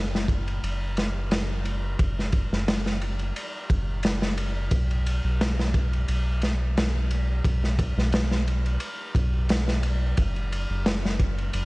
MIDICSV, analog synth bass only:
0, 0, Header, 1, 2, 480
1, 0, Start_track
1, 0, Tempo, 681818
1, 1401, Time_signature, 4, 2, 24, 8
1, 8202, End_track
2, 0, Start_track
2, 0, Title_t, "Analog synth bass"
2, 0, Program_c, 0, 38
2, 0, Note_on_c, 0, 30, 93
2, 421, Note_off_c, 0, 30, 0
2, 443, Note_on_c, 0, 30, 85
2, 1381, Note_off_c, 0, 30, 0
2, 1405, Note_on_c, 0, 30, 91
2, 1747, Note_off_c, 0, 30, 0
2, 1773, Note_on_c, 0, 30, 99
2, 2341, Note_off_c, 0, 30, 0
2, 2605, Note_on_c, 0, 30, 96
2, 3302, Note_off_c, 0, 30, 0
2, 3319, Note_on_c, 0, 35, 91
2, 3664, Note_off_c, 0, 35, 0
2, 3690, Note_on_c, 0, 35, 93
2, 4260, Note_off_c, 0, 35, 0
2, 4282, Note_on_c, 0, 35, 79
2, 5220, Note_off_c, 0, 35, 0
2, 5243, Note_on_c, 0, 35, 89
2, 5586, Note_off_c, 0, 35, 0
2, 5611, Note_on_c, 0, 35, 102
2, 6180, Note_off_c, 0, 35, 0
2, 6443, Note_on_c, 0, 35, 96
2, 7140, Note_off_c, 0, 35, 0
2, 7166, Note_on_c, 0, 30, 87
2, 7508, Note_off_c, 0, 30, 0
2, 7531, Note_on_c, 0, 30, 91
2, 8100, Note_off_c, 0, 30, 0
2, 8123, Note_on_c, 0, 30, 86
2, 8202, Note_off_c, 0, 30, 0
2, 8202, End_track
0, 0, End_of_file